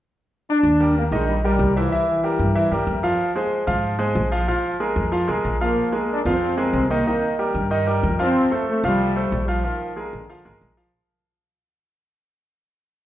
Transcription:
0.49 trombone section D4
0.63 upright bass D#2
0.80 grand piano G3 G4 A#4
0.97 trombone section A#3
1.11 upright bass A#1, grand piano D#3 D#4 D#5, trombone section G#3
1.28 trombone section G3
1.44 trombone section G3, grand piano G3 G4 A#4
1.59 upright bass C2
1.75 grand piano E3 E4 E5, trombone section F3
1.91 trombone section E3, grand piano E3 E4 E5
2.08 trombone section E3
2.24 grand piano G3 G4 A#4
2.39 upright bass G2
2.55 grand piano E3 E4 E5
2.71 upright bass G2, grand piano G3 G4 A#4
2.87 upright bass F2
3.03 grand piano F3 F4 F5
3.36 grand piano G#3 G#4 C5
3.67 upright bass G#2, grand piano F3 F4 F5
3.99 grand piano G#3 G#4 C5
4.15 upright bass A#1
4.32 grand piano F3 F4 F5
4.48 grand piano F3 F4 F5
4.80 grand piano G#3 G#4 A#4
4.96 upright bass F2
5.12 grand piano F3 F4 F5
5.28 upright bass C2, grand piano G#3 G#4 A#4
5.44 upright bass A#1
5.61 grand piano F3 F4 F5, trombone section A#3
5.92 grand piano G#3 G#4 A#4
6.10 trombone section D4
6.25 upright bass F2, grand piano F3 F4 F5, trombone section C4
6.58 grand piano G#3 G#4 A#4
6.73 upright bass C2
6.90 grand piano D#3 D#4 D#5, trombone section A#3
7.07 grand piano D#3 D#4 D#5
7.39 grand piano G3 G4 A#4
7.54 upright bass G2
7.71 grand piano D#3 D#4 D#5
7.87 grand piano G3 G4 A#4
8.03 upright bass F2
8.19 grand piano F3 F4 F5, trombone section C4
8.51 grand piano A3 A4 C5
8.69 trombone section A3
8.84 upright bass C2, grand piano F3 F4 F5, trombone section G3
9.16 grand piano A3 A4 C5
9.32 upright bass A#1
9.48 grand piano F3 F4 F5, trombone section F3
9.64 trombone section D#3, grand piano F3 F4 F5
9.96 grand piano G#3 G#4 A#4
10.13 upright bass A#1, trombone section D3
10.30 grand piano F3 F4 F5
10.45 upright bass G#1, grand piano G#3 G#4 A#4
10.61 upright bass A#1
10.77 grand piano F3 F4 F5

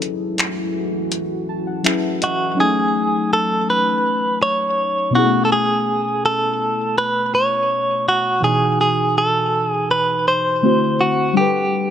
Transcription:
Already playing: ambient pad E3 A3 F#4, synth keys F#3 C#4 E4 G#4 A4
0.02 closed hi-hat
0.38 finger snap, closed hi-hat
1.12 closed hi-hat
1.49 synth keys A5
1.67 synth keys F#5
1.83 synth keys F#3 C#4 E4 G#4 B4 E5, finger snap, closed hi-hat
2.22 clean electric guitar F#4, synth keys D#5, closed hi-hat
2.55 synth keys F#3 C#4 D#4
2.60 synth keys A3, clean electric guitar G#4
3.33 clean electric guitar A4
3.70 clean electric guitar B4
4.43 clean electric guitar C#5
5.11 synth keys B2 B3 C#4
5.15 synth keys E4 G#4, clean electric guitar F#4
5.25 synth keys A3
5.45 clean electric guitar A4
5.52 clean electric guitar G#4
6.26 clean electric guitar A4
6.98 clean electric guitar B4
7.35 clean electric guitar C#5
8.09 clean electric guitar F#4
8.40 synth keys B2 E3 D#4, clean electric guitar G#4
8.46 synth keys F#4 G#5
8.81 clean electric guitar G#4
9.18 clean electric guitar A4
9.70 clean electric guitar G#4
9.91 clean electric guitar B4
10.28 clean electric guitar C5
10.62 synth keys D3 A3 C4 E4 F#4 C5
11.01 clean electric guitar F#4
11.33 synth keys G3 D4 F#5, clean electric guitar G4
11.39 synth keys A4 B4

